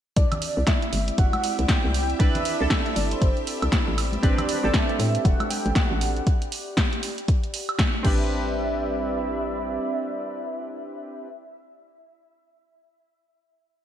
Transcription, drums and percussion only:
0.17 kick, closed hi-hat
0.32 closed hi-hat, low conga, high woodblock
0.42 open hi-hat
0.67 kick, snare, closed hi-hat
0.82 closed hi-hat
0.93 open hi-hat, high conga
1.08 closed hi-hat
1.18 kick, closed hi-hat
1.33 closed hi-hat, high conga, high woodblock
1.44 open hi-hat
1.59 closed hi-hat, high conga
1.68 kick, snare, closed hi-hat
1.94 open hi-hat
2.10 closed hi-hat
2.20 kick, closed hi-hat
2.35 closed hi-hat, low conga
2.45 open hi-hat
2.70 kick, snare, closed hi-hat
2.86 closed hi-hat
2.96 open hi-hat, high conga
3.11 closed hi-hat
3.22 kick, closed hi-hat
3.37 closed hi-hat
3.47 open hi-hat
3.62 closed hi-hat, high woodblock
3.72 kick, snare, closed hi-hat
3.98 open hi-hat, high woodblock
4.13 closed hi-hat, high conga
4.23 kick, closed hi-hat
4.38 closed hi-hat, low conga, high woodblock
4.49 open hi-hat
4.74 kick, snare, closed hi-hat
4.89 closed hi-hat
4.99 open hi-hat, high conga
5.15 closed hi-hat
5.25 kick, closed hi-hat
5.40 closed hi-hat, high conga, high woodblock
5.50 open hi-hat
5.66 closed hi-hat, high conga
5.75 kick, snare, closed hi-hat
6.01 open hi-hat
6.17 closed hi-hat
6.27 kick, closed hi-hat
6.42 closed hi-hat
6.52 open hi-hat
6.77 kick, snare, closed hi-hat
6.93 closed hi-hat
7.03 open hi-hat
7.18 closed hi-hat
7.28 kick, closed hi-hat
7.44 closed hi-hat
7.54 open hi-hat
7.69 closed hi-hat, high woodblock
7.79 kick, snare, closed hi-hat
8.05 kick, crash

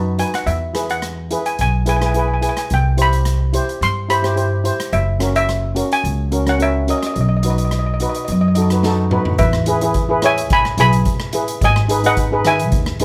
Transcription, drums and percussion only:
0.19 closed hi-hat
0.34 cross-stick, closed hi-hat
0.47 closed hi-hat
0.75 cross-stick, closed hi-hat
0.90 closed hi-hat
1.02 cross-stick, closed hi-hat
1.31 closed hi-hat
1.46 closed hi-hat
1.59 closed hi-hat
1.86 closed hi-hat
2.02 cross-stick, closed hi-hat
2.14 closed hi-hat
2.42 closed hi-hat
2.57 cross-stick, closed hi-hat
2.70 closed hi-hat
2.98 closed hi-hat
3.13 closed hi-hat
3.25 cross-stick, closed hi-hat
3.54 closed hi-hat
3.69 closed hi-hat
3.82 closed hi-hat
4.10 closed hi-hat
4.24 cross-stick, closed hi-hat
4.37 closed hi-hat
4.65 closed hi-hat
4.80 cross-stick, closed hi-hat
4.93 closed hi-hat
5.20 cross-stick, closed hi-hat
5.36 closed hi-hat
5.49 cross-stick, closed hi-hat
5.76 closed hi-hat
5.92 closed hi-hat
6.05 closed hi-hat
6.32 closed hi-hat
6.47 cross-stick, closed hi-hat
6.60 closed hi-hat
6.88 closed hi-hat
7.03 cross-stick, closed hi-hat
7.16 closed hi-hat
7.43 closed hi-hat
7.58 closed hi-hat
7.71 cross-stick, closed hi-hat
8.00 closed hi-hat
8.14 closed hi-hat
8.28 closed hi-hat
8.55 closed hi-hat
8.70 cross-stick, closed hi-hat
8.83 snare
9.11 mid tom
9.25 floor tom
9.38 kick, closed hi-hat
9.53 cross-stick
9.66 closed hi-hat
9.81 closed hi-hat
9.94 kick, closed hi-hat
10.22 cross-stick, closed hi-hat
10.38 closed hi-hat
10.50 kick, closed hi-hat
10.65 cross-stick
10.78 closed hi-hat
10.93 closed hi-hat
11.05 kick, closed hi-hat
11.20 cross-stick
11.33 closed hi-hat
11.48 closed hi-hat
11.61 kick, closed hi-hat
11.76 cross-stick
11.89 closed hi-hat
12.04 closed hi-hat
12.17 kick, closed hi-hat
12.45 cross-stick, closed hi-hat
12.59 closed hi-hat
12.72 kick, closed hi-hat
12.86 cross-stick
13.00 closed hi-hat

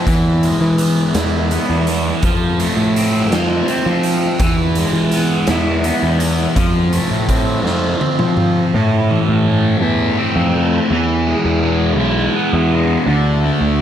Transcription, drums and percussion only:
0.07 kick, closed hi-hat
0.43 closed hi-hat
0.78 closed hi-hat
1.15 snare, closed hi-hat
1.51 closed hi-hat
1.87 closed hi-hat
2.22 kick, closed hi-hat
2.60 closed hi-hat
2.96 closed hi-hat
3.32 snare, closed hi-hat
3.68 closed hi-hat
4.03 closed hi-hat
4.40 kick, closed hi-hat
4.75 closed hi-hat
5.12 closed hi-hat
5.47 snare, closed hi-hat
5.84 closed hi-hat
6.20 closed hi-hat
6.56 kick, closed hi-hat
6.93 closed hi-hat
7.29 kick, closed hi-hat
7.66 snare
8.01 high tom
8.19 mid tom
8.37 mid tom

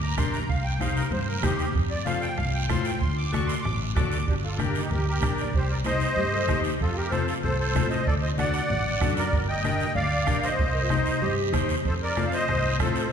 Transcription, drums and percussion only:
0.17 bombo low, bombo rim, high conga, short guiro
0.34 short guiro
0.49 bombo low, high conga, long guiro
0.80 bombo rim, high conga, short guiro
0.97 short guiro
1.11 high conga, low conga, long guiro
1.43 bombo low, bombo rim, high conga, low conga, short guiro
1.59 short guiro
1.75 bombo low, high conga, low conga, long guiro
2.06 bombo rim, high conga, short guiro
2.22 short guiro
2.38 bombo rim, high conga, low conga, long guiro
2.69 bombo low, bombo rim, high conga, short guiro
2.85 short guiro
3.01 bombo low, high conga, long guiro
3.33 bombo rim, high conga, short guiro
3.49 short guiro
3.65 bombo rim, high conga, low conga, long guiro
3.96 bombo low, bombo rim, high conga, low conga, short guiro
4.12 short guiro
4.28 bombo low, high conga, long guiro
4.59 bombo rim, high conga, short guiro
4.75 short guiro
4.91 high conga, low conga, long guiro
5.21 bombo low, bombo rim, high conga, short guiro
5.38 short guiro
5.53 bombo low, high conga, long guiro
5.84 bombo rim, high conga, short guiro
6.00 short guiro
6.16 high conga, low conga, long guiro
6.48 bombo low, bombo rim, high conga, short guiro
6.64 short guiro
6.80 bombo low, high conga, long guiro
7.12 bombo rim, high conga, short guiro
7.28 short guiro
7.43 high conga, low conga, long guiro
7.75 bombo low, bombo rim, high conga, short guiro
7.91 short guiro
8.07 bombo low, high conga, long guiro
8.38 bombo rim, high conga, short guiro
8.54 short guiro
8.70 high conga, low conga, long guiro
9.01 bombo low, bombo rim, high conga, short guiro
9.17 short guiro
9.33 bombo low, high conga, low conga, long guiro
9.64 bombo rim, high conga, short guiro
9.80 short guiro
9.95 high conga, low conga, long guiro
10.26 bombo low, bombo rim, high conga, short guiro
10.43 short guiro
10.59 bombo low, high conga, low conga, long guiro
10.90 bombo rim, high conga, short guiro
11.06 short guiro
11.22 high conga, low conga, long guiro
11.53 bombo low, bombo rim, high conga, short guiro
11.69 short guiro
11.85 bombo low, high conga, long guiro
12.16 bombo rim, high conga, short guiro
12.32 short guiro
12.48 bombo rim, high conga, low conga, long guiro
12.80 bombo low, bombo rim, high conga, short guiro
12.96 short guiro

